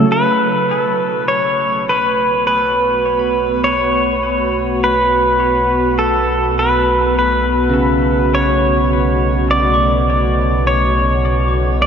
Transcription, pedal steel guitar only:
0, 0, Header, 1, 2, 480
1, 0, Start_track
1, 0, Tempo, 1178782
1, 45, Time_signature, 4, 2, 24, 8
1, 1965, Tempo, 1162791
1, 4872, End_track
2, 0, Start_track
2, 0, Title_t, "Pedal steel guitar"
2, 0, Program_c, 0, 26
2, 0, Note_on_c, 0, 69, 75
2, 48, Note_on_c, 0, 71, 80
2, 61, Note_off_c, 0, 69, 0
2, 521, Note_off_c, 0, 71, 0
2, 522, Note_on_c, 0, 73, 79
2, 750, Note_off_c, 0, 73, 0
2, 771, Note_on_c, 0, 71, 72
2, 1001, Note_off_c, 0, 71, 0
2, 1006, Note_on_c, 0, 71, 83
2, 1471, Note_off_c, 0, 71, 0
2, 1483, Note_on_c, 0, 73, 90
2, 1968, Note_off_c, 0, 73, 0
2, 1970, Note_on_c, 0, 71, 89
2, 2444, Note_on_c, 0, 69, 80
2, 2465, Note_off_c, 0, 71, 0
2, 2694, Note_on_c, 0, 71, 84
2, 2695, Note_off_c, 0, 69, 0
2, 2935, Note_off_c, 0, 71, 0
2, 2940, Note_on_c, 0, 71, 80
2, 3417, Note_off_c, 0, 71, 0
2, 3418, Note_on_c, 0, 73, 91
2, 3896, Note_off_c, 0, 73, 0
2, 3898, Note_on_c, 0, 74, 103
2, 4377, Note_off_c, 0, 74, 0
2, 4378, Note_on_c, 0, 73, 86
2, 4851, Note_off_c, 0, 73, 0
2, 4852, Note_on_c, 0, 74, 101
2, 4872, Note_off_c, 0, 74, 0
2, 4872, End_track
0, 0, End_of_file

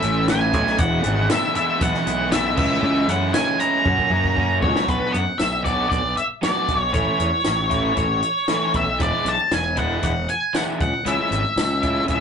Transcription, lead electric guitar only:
0, 0, Header, 1, 2, 480
1, 0, Start_track
1, 0, Tempo, 513259
1, 734, Time_signature, 4, 2, 24, 8
1, 11411, End_track
2, 0, Start_track
2, 0, Title_t, "Lead electric guitar"
2, 0, Program_c, 0, 29
2, 0, Note_on_c, 0, 76, 90
2, 225, Note_off_c, 0, 76, 0
2, 281, Note_on_c, 0, 80, 101
2, 741, Note_off_c, 0, 80, 0
2, 745, Note_on_c, 0, 78, 101
2, 1184, Note_off_c, 0, 78, 0
2, 1229, Note_on_c, 0, 76, 91
2, 1453, Note_off_c, 0, 76, 0
2, 1464, Note_on_c, 0, 76, 92
2, 1703, Note_off_c, 0, 76, 0
2, 1703, Note_on_c, 0, 78, 98
2, 2175, Note_on_c, 0, 76, 95
2, 2188, Note_off_c, 0, 78, 0
2, 2394, Note_off_c, 0, 76, 0
2, 2420, Note_on_c, 0, 76, 109
2, 2892, Note_on_c, 0, 78, 90
2, 2906, Note_off_c, 0, 76, 0
2, 3122, Note_off_c, 0, 78, 0
2, 3125, Note_on_c, 0, 80, 103
2, 3364, Note_on_c, 0, 82, 105
2, 3371, Note_off_c, 0, 80, 0
2, 4285, Note_off_c, 0, 82, 0
2, 4325, Note_on_c, 0, 73, 89
2, 4569, Note_on_c, 0, 71, 70
2, 4571, Note_off_c, 0, 73, 0
2, 4792, Note_on_c, 0, 78, 75
2, 4813, Note_off_c, 0, 71, 0
2, 5020, Note_off_c, 0, 78, 0
2, 5033, Note_on_c, 0, 76, 80
2, 5274, Note_off_c, 0, 76, 0
2, 5277, Note_on_c, 0, 74, 74
2, 5503, Note_off_c, 0, 74, 0
2, 5514, Note_on_c, 0, 74, 77
2, 5767, Note_off_c, 0, 74, 0
2, 5773, Note_on_c, 0, 76, 70
2, 5837, Note_off_c, 0, 76, 0
2, 6019, Note_on_c, 0, 74, 83
2, 6346, Note_off_c, 0, 74, 0
2, 6346, Note_on_c, 0, 73, 83
2, 6461, Note_off_c, 0, 73, 0
2, 6491, Note_on_c, 0, 73, 84
2, 7450, Note_off_c, 0, 73, 0
2, 7462, Note_on_c, 0, 73, 81
2, 8191, Note_off_c, 0, 73, 0
2, 8194, Note_on_c, 0, 76, 96
2, 8432, Note_off_c, 0, 76, 0
2, 8438, Note_on_c, 0, 74, 94
2, 8675, Note_off_c, 0, 74, 0
2, 8679, Note_on_c, 0, 81, 88
2, 8893, Note_off_c, 0, 81, 0
2, 8919, Note_on_c, 0, 80, 90
2, 9149, Note_off_c, 0, 80, 0
2, 9153, Note_on_c, 0, 78, 86
2, 9380, Note_off_c, 0, 78, 0
2, 9391, Note_on_c, 0, 78, 93
2, 9628, Note_off_c, 0, 78, 0
2, 9631, Note_on_c, 0, 80, 82
2, 9850, Note_off_c, 0, 80, 0
2, 9876, Note_on_c, 0, 78, 86
2, 9939, Note_off_c, 0, 78, 0
2, 10112, Note_on_c, 0, 78, 89
2, 10354, Note_off_c, 0, 78, 0
2, 10359, Note_on_c, 0, 76, 87
2, 11274, Note_off_c, 0, 76, 0
2, 11321, Note_on_c, 0, 76, 71
2, 11411, Note_off_c, 0, 76, 0
2, 11411, End_track
0, 0, End_of_file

